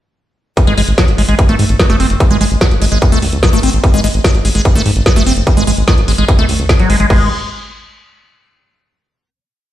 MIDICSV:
0, 0, Header, 1, 4, 480
1, 0, Start_track
1, 0, Tempo, 408163
1, 671, Time_signature, 4, 2, 24, 8
1, 11433, End_track
2, 0, Start_track
2, 0, Title_t, "Acid bass"
2, 0, Program_c, 0, 38
2, 791, Note_on_c, 0, 56, 100
2, 870, Note_off_c, 0, 56, 0
2, 911, Note_on_c, 0, 56, 106
2, 958, Note_off_c, 0, 56, 0
2, 1151, Note_on_c, 0, 54, 86
2, 1230, Note_off_c, 0, 54, 0
2, 1392, Note_on_c, 0, 56, 80
2, 1438, Note_off_c, 0, 56, 0
2, 1511, Note_on_c, 0, 56, 79
2, 1590, Note_off_c, 0, 56, 0
2, 1751, Note_on_c, 0, 57, 108
2, 1830, Note_off_c, 0, 57, 0
2, 2111, Note_on_c, 0, 54, 89
2, 2190, Note_off_c, 0, 54, 0
2, 2232, Note_on_c, 0, 57, 108
2, 2310, Note_off_c, 0, 57, 0
2, 2352, Note_on_c, 0, 60, 80
2, 2430, Note_off_c, 0, 60, 0
2, 2712, Note_on_c, 0, 56, 102
2, 2790, Note_off_c, 0, 56, 0
2, 2832, Note_on_c, 0, 56, 97
2, 2879, Note_off_c, 0, 56, 0
2, 3071, Note_on_c, 0, 54, 89
2, 3150, Note_off_c, 0, 54, 0
2, 3312, Note_on_c, 0, 56, 81
2, 3358, Note_off_c, 0, 56, 0
2, 3432, Note_on_c, 0, 56, 80
2, 3510, Note_off_c, 0, 56, 0
2, 3671, Note_on_c, 0, 57, 111
2, 3750, Note_off_c, 0, 57, 0
2, 4032, Note_on_c, 0, 54, 83
2, 4110, Note_off_c, 0, 54, 0
2, 4152, Note_on_c, 0, 57, 102
2, 4230, Note_off_c, 0, 57, 0
2, 4271, Note_on_c, 0, 60, 81
2, 4350, Note_off_c, 0, 60, 0
2, 4631, Note_on_c, 0, 56, 103
2, 4710, Note_off_c, 0, 56, 0
2, 4752, Note_on_c, 0, 56, 102
2, 4799, Note_off_c, 0, 56, 0
2, 4992, Note_on_c, 0, 54, 88
2, 5070, Note_off_c, 0, 54, 0
2, 5231, Note_on_c, 0, 56, 83
2, 5278, Note_off_c, 0, 56, 0
2, 5351, Note_on_c, 0, 56, 78
2, 5430, Note_off_c, 0, 56, 0
2, 5591, Note_on_c, 0, 57, 106
2, 5670, Note_off_c, 0, 57, 0
2, 5951, Note_on_c, 0, 54, 89
2, 6030, Note_off_c, 0, 54, 0
2, 6071, Note_on_c, 0, 57, 103
2, 6150, Note_off_c, 0, 57, 0
2, 6191, Note_on_c, 0, 60, 80
2, 6269, Note_off_c, 0, 60, 0
2, 6551, Note_on_c, 0, 56, 97
2, 6630, Note_off_c, 0, 56, 0
2, 6671, Note_on_c, 0, 56, 100
2, 6718, Note_off_c, 0, 56, 0
2, 6911, Note_on_c, 0, 54, 87
2, 6990, Note_off_c, 0, 54, 0
2, 7151, Note_on_c, 0, 56, 75
2, 7198, Note_off_c, 0, 56, 0
2, 7271, Note_on_c, 0, 56, 76
2, 7350, Note_off_c, 0, 56, 0
2, 7511, Note_on_c, 0, 57, 107
2, 7590, Note_off_c, 0, 57, 0
2, 7871, Note_on_c, 0, 56, 85
2, 7918, Note_off_c, 0, 56, 0
2, 7991, Note_on_c, 0, 54, 75
2, 8105, Note_off_c, 0, 54, 0
2, 8111, Note_on_c, 0, 56, 81
2, 8190, Note_off_c, 0, 56, 0
2, 8231, Note_on_c, 0, 56, 82
2, 8310, Note_off_c, 0, 56, 0
2, 8351, Note_on_c, 0, 56, 91
2, 8575, Note_off_c, 0, 56, 0
2, 11433, End_track
3, 0, Start_track
3, 0, Title_t, "Analog synth bass"
3, 0, Program_c, 1, 38
3, 791, Note_on_c, 1, 32, 83
3, 858, Note_off_c, 1, 32, 0
3, 911, Note_on_c, 1, 32, 104
3, 978, Note_off_c, 1, 32, 0
3, 1031, Note_on_c, 1, 32, 88
3, 1098, Note_off_c, 1, 32, 0
3, 1271, Note_on_c, 1, 32, 89
3, 1338, Note_off_c, 1, 32, 0
3, 1391, Note_on_c, 1, 32, 98
3, 1458, Note_off_c, 1, 32, 0
3, 1511, Note_on_c, 1, 32, 97
3, 1578, Note_off_c, 1, 32, 0
3, 1751, Note_on_c, 1, 32, 89
3, 1818, Note_off_c, 1, 32, 0
3, 1871, Note_on_c, 1, 44, 100
3, 1938, Note_off_c, 1, 44, 0
3, 1991, Note_on_c, 1, 32, 93
3, 2058, Note_off_c, 1, 32, 0
3, 2231, Note_on_c, 1, 30, 89
3, 2298, Note_off_c, 1, 30, 0
3, 2351, Note_on_c, 1, 30, 108
3, 2418, Note_off_c, 1, 30, 0
3, 2471, Note_on_c, 1, 30, 95
3, 2538, Note_off_c, 1, 30, 0
3, 2711, Note_on_c, 1, 32, 88
3, 2778, Note_off_c, 1, 32, 0
3, 2831, Note_on_c, 1, 32, 100
3, 2898, Note_off_c, 1, 32, 0
3, 2951, Note_on_c, 1, 32, 86
3, 3018, Note_off_c, 1, 32, 0
3, 3191, Note_on_c, 1, 32, 88
3, 3258, Note_off_c, 1, 32, 0
3, 3311, Note_on_c, 1, 32, 102
3, 3378, Note_off_c, 1, 32, 0
3, 3431, Note_on_c, 1, 32, 100
3, 3498, Note_off_c, 1, 32, 0
3, 3671, Note_on_c, 1, 37, 86
3, 3738, Note_off_c, 1, 37, 0
3, 3791, Note_on_c, 1, 37, 103
3, 3858, Note_off_c, 1, 37, 0
3, 3911, Note_on_c, 1, 37, 96
3, 3978, Note_off_c, 1, 37, 0
3, 4151, Note_on_c, 1, 32, 89
3, 4218, Note_off_c, 1, 32, 0
3, 4271, Note_on_c, 1, 32, 111
3, 4338, Note_off_c, 1, 32, 0
3, 4391, Note_on_c, 1, 32, 93
3, 4458, Note_off_c, 1, 32, 0
3, 4632, Note_on_c, 1, 32, 85
3, 4698, Note_off_c, 1, 32, 0
3, 4751, Note_on_c, 1, 32, 105
3, 4818, Note_off_c, 1, 32, 0
3, 4871, Note_on_c, 1, 32, 91
3, 4938, Note_off_c, 1, 32, 0
3, 5111, Note_on_c, 1, 32, 89
3, 5178, Note_off_c, 1, 32, 0
3, 5231, Note_on_c, 1, 32, 100
3, 5298, Note_off_c, 1, 32, 0
3, 5351, Note_on_c, 1, 32, 94
3, 5418, Note_off_c, 1, 32, 0
3, 5591, Note_on_c, 1, 32, 92
3, 5658, Note_off_c, 1, 32, 0
3, 5711, Note_on_c, 1, 44, 101
3, 5778, Note_off_c, 1, 44, 0
3, 5831, Note_on_c, 1, 32, 89
3, 5898, Note_off_c, 1, 32, 0
3, 6071, Note_on_c, 1, 30, 92
3, 6138, Note_off_c, 1, 30, 0
3, 6191, Note_on_c, 1, 30, 109
3, 6258, Note_off_c, 1, 30, 0
3, 6311, Note_on_c, 1, 30, 91
3, 6378, Note_off_c, 1, 30, 0
3, 6551, Note_on_c, 1, 32, 86
3, 6618, Note_off_c, 1, 32, 0
3, 6671, Note_on_c, 1, 32, 105
3, 6738, Note_off_c, 1, 32, 0
3, 6791, Note_on_c, 1, 32, 93
3, 6857, Note_off_c, 1, 32, 0
3, 7031, Note_on_c, 1, 32, 91
3, 7098, Note_off_c, 1, 32, 0
3, 7151, Note_on_c, 1, 32, 97
3, 7218, Note_off_c, 1, 32, 0
3, 7271, Note_on_c, 1, 32, 93
3, 7338, Note_off_c, 1, 32, 0
3, 7511, Note_on_c, 1, 37, 88
3, 7578, Note_off_c, 1, 37, 0
3, 7631, Note_on_c, 1, 37, 102
3, 7698, Note_off_c, 1, 37, 0
3, 7751, Note_on_c, 1, 37, 90
3, 7818, Note_off_c, 1, 37, 0
3, 7991, Note_on_c, 1, 32, 91
3, 8058, Note_off_c, 1, 32, 0
3, 8112, Note_on_c, 1, 32, 111
3, 8178, Note_off_c, 1, 32, 0
3, 8231, Note_on_c, 1, 32, 93
3, 8298, Note_off_c, 1, 32, 0
3, 8351, Note_on_c, 1, 32, 102
3, 8574, Note_off_c, 1, 32, 0
3, 11433, End_track
4, 0, Start_track
4, 0, Title_t, "Drums"
4, 671, Note_on_c, 9, 36, 110
4, 671, Note_on_c, 9, 42, 97
4, 789, Note_off_c, 9, 36, 0
4, 789, Note_off_c, 9, 42, 0
4, 792, Note_on_c, 9, 42, 57
4, 909, Note_off_c, 9, 42, 0
4, 911, Note_on_c, 9, 46, 111
4, 1029, Note_off_c, 9, 46, 0
4, 1031, Note_on_c, 9, 42, 54
4, 1149, Note_off_c, 9, 42, 0
4, 1151, Note_on_c, 9, 36, 120
4, 1151, Note_on_c, 9, 38, 124
4, 1151, Note_on_c, 9, 42, 98
4, 1269, Note_off_c, 9, 36, 0
4, 1269, Note_off_c, 9, 38, 0
4, 1269, Note_off_c, 9, 42, 0
4, 1271, Note_on_c, 9, 42, 55
4, 1389, Note_off_c, 9, 42, 0
4, 1391, Note_on_c, 9, 46, 108
4, 1509, Note_off_c, 9, 46, 0
4, 1511, Note_on_c, 9, 42, 55
4, 1629, Note_off_c, 9, 42, 0
4, 1631, Note_on_c, 9, 36, 121
4, 1631, Note_on_c, 9, 42, 102
4, 1749, Note_off_c, 9, 36, 0
4, 1749, Note_off_c, 9, 42, 0
4, 1751, Note_on_c, 9, 42, 52
4, 1869, Note_off_c, 9, 42, 0
4, 1871, Note_on_c, 9, 46, 104
4, 1989, Note_off_c, 9, 46, 0
4, 1991, Note_on_c, 9, 42, 56
4, 2109, Note_off_c, 9, 42, 0
4, 2111, Note_on_c, 9, 36, 121
4, 2111, Note_on_c, 9, 38, 118
4, 2111, Note_on_c, 9, 42, 96
4, 2229, Note_off_c, 9, 36, 0
4, 2229, Note_off_c, 9, 38, 0
4, 2229, Note_off_c, 9, 42, 0
4, 2231, Note_on_c, 9, 38, 40
4, 2231, Note_on_c, 9, 42, 57
4, 2349, Note_off_c, 9, 38, 0
4, 2349, Note_off_c, 9, 42, 0
4, 2351, Note_on_c, 9, 46, 107
4, 2469, Note_off_c, 9, 46, 0
4, 2471, Note_on_c, 9, 42, 59
4, 2589, Note_off_c, 9, 42, 0
4, 2591, Note_on_c, 9, 36, 121
4, 2591, Note_on_c, 9, 42, 94
4, 2709, Note_off_c, 9, 36, 0
4, 2709, Note_off_c, 9, 42, 0
4, 2711, Note_on_c, 9, 42, 55
4, 2829, Note_off_c, 9, 42, 0
4, 2831, Note_on_c, 9, 46, 118
4, 2949, Note_off_c, 9, 46, 0
4, 2951, Note_on_c, 9, 42, 52
4, 3069, Note_off_c, 9, 42, 0
4, 3071, Note_on_c, 9, 36, 118
4, 3071, Note_on_c, 9, 38, 125
4, 3071, Note_on_c, 9, 42, 92
4, 3189, Note_off_c, 9, 36, 0
4, 3189, Note_off_c, 9, 38, 0
4, 3189, Note_off_c, 9, 42, 0
4, 3191, Note_on_c, 9, 42, 52
4, 3309, Note_off_c, 9, 42, 0
4, 3311, Note_on_c, 9, 46, 113
4, 3429, Note_off_c, 9, 46, 0
4, 3431, Note_on_c, 9, 42, 54
4, 3549, Note_off_c, 9, 42, 0
4, 3551, Note_on_c, 9, 36, 126
4, 3551, Note_on_c, 9, 42, 97
4, 3669, Note_off_c, 9, 36, 0
4, 3669, Note_off_c, 9, 42, 0
4, 3671, Note_on_c, 9, 42, 54
4, 3789, Note_off_c, 9, 42, 0
4, 3791, Note_on_c, 9, 46, 110
4, 3909, Note_off_c, 9, 46, 0
4, 3911, Note_on_c, 9, 42, 56
4, 4029, Note_off_c, 9, 42, 0
4, 4031, Note_on_c, 9, 36, 127
4, 4031, Note_on_c, 9, 38, 125
4, 4031, Note_on_c, 9, 42, 89
4, 4149, Note_off_c, 9, 36, 0
4, 4149, Note_off_c, 9, 38, 0
4, 4149, Note_off_c, 9, 42, 0
4, 4151, Note_on_c, 9, 42, 55
4, 4269, Note_off_c, 9, 42, 0
4, 4271, Note_on_c, 9, 46, 116
4, 4388, Note_off_c, 9, 46, 0
4, 4391, Note_on_c, 9, 42, 59
4, 4509, Note_off_c, 9, 42, 0
4, 4511, Note_on_c, 9, 36, 126
4, 4511, Note_on_c, 9, 42, 90
4, 4629, Note_off_c, 9, 36, 0
4, 4629, Note_off_c, 9, 42, 0
4, 4631, Note_on_c, 9, 42, 52
4, 4749, Note_off_c, 9, 42, 0
4, 4751, Note_on_c, 9, 46, 117
4, 4869, Note_off_c, 9, 46, 0
4, 4871, Note_on_c, 9, 42, 54
4, 4989, Note_off_c, 9, 42, 0
4, 4991, Note_on_c, 9, 36, 124
4, 4991, Note_on_c, 9, 38, 122
4, 4991, Note_on_c, 9, 42, 90
4, 5109, Note_off_c, 9, 36, 0
4, 5109, Note_off_c, 9, 38, 0
4, 5109, Note_off_c, 9, 42, 0
4, 5111, Note_on_c, 9, 42, 52
4, 5229, Note_off_c, 9, 42, 0
4, 5231, Note_on_c, 9, 46, 114
4, 5349, Note_off_c, 9, 46, 0
4, 5351, Note_on_c, 9, 42, 51
4, 5469, Note_off_c, 9, 42, 0
4, 5471, Note_on_c, 9, 36, 127
4, 5471, Note_on_c, 9, 42, 93
4, 5589, Note_off_c, 9, 36, 0
4, 5589, Note_off_c, 9, 42, 0
4, 5591, Note_on_c, 9, 42, 52
4, 5708, Note_off_c, 9, 42, 0
4, 5711, Note_on_c, 9, 46, 112
4, 5829, Note_off_c, 9, 46, 0
4, 5831, Note_on_c, 9, 42, 55
4, 5949, Note_off_c, 9, 42, 0
4, 5951, Note_on_c, 9, 36, 127
4, 5951, Note_on_c, 9, 38, 123
4, 5951, Note_on_c, 9, 42, 91
4, 6069, Note_off_c, 9, 36, 0
4, 6069, Note_off_c, 9, 38, 0
4, 6069, Note_off_c, 9, 42, 0
4, 6071, Note_on_c, 9, 38, 38
4, 6071, Note_on_c, 9, 42, 52
4, 6189, Note_off_c, 9, 38, 0
4, 6189, Note_off_c, 9, 42, 0
4, 6191, Note_on_c, 9, 46, 112
4, 6308, Note_off_c, 9, 46, 0
4, 6311, Note_on_c, 9, 42, 53
4, 6428, Note_off_c, 9, 42, 0
4, 6431, Note_on_c, 9, 36, 120
4, 6431, Note_on_c, 9, 42, 92
4, 6549, Note_off_c, 9, 36, 0
4, 6549, Note_off_c, 9, 42, 0
4, 6551, Note_on_c, 9, 42, 50
4, 6668, Note_off_c, 9, 42, 0
4, 6671, Note_on_c, 9, 46, 111
4, 6788, Note_off_c, 9, 46, 0
4, 6791, Note_on_c, 9, 42, 53
4, 6908, Note_off_c, 9, 42, 0
4, 6910, Note_on_c, 9, 38, 118
4, 6910, Note_on_c, 9, 42, 86
4, 6911, Note_on_c, 9, 36, 126
4, 7028, Note_off_c, 9, 38, 0
4, 7028, Note_off_c, 9, 42, 0
4, 7029, Note_off_c, 9, 36, 0
4, 7031, Note_on_c, 9, 42, 52
4, 7148, Note_off_c, 9, 42, 0
4, 7151, Note_on_c, 9, 46, 110
4, 7268, Note_off_c, 9, 46, 0
4, 7271, Note_on_c, 9, 42, 49
4, 7388, Note_off_c, 9, 42, 0
4, 7391, Note_on_c, 9, 36, 126
4, 7391, Note_on_c, 9, 42, 92
4, 7508, Note_off_c, 9, 42, 0
4, 7509, Note_off_c, 9, 36, 0
4, 7511, Note_on_c, 9, 42, 51
4, 7628, Note_off_c, 9, 42, 0
4, 7631, Note_on_c, 9, 46, 112
4, 7749, Note_off_c, 9, 46, 0
4, 7751, Note_on_c, 9, 42, 53
4, 7869, Note_off_c, 9, 42, 0
4, 7871, Note_on_c, 9, 36, 127
4, 7871, Note_on_c, 9, 38, 120
4, 7871, Note_on_c, 9, 42, 88
4, 7989, Note_off_c, 9, 36, 0
4, 7989, Note_off_c, 9, 38, 0
4, 7989, Note_off_c, 9, 42, 0
4, 7991, Note_on_c, 9, 42, 49
4, 8109, Note_off_c, 9, 42, 0
4, 8111, Note_on_c, 9, 46, 115
4, 8229, Note_off_c, 9, 46, 0
4, 8231, Note_on_c, 9, 42, 52
4, 8349, Note_off_c, 9, 42, 0
4, 8351, Note_on_c, 9, 36, 114
4, 8351, Note_on_c, 9, 49, 90
4, 8469, Note_off_c, 9, 36, 0
4, 8469, Note_off_c, 9, 49, 0
4, 11433, End_track
0, 0, End_of_file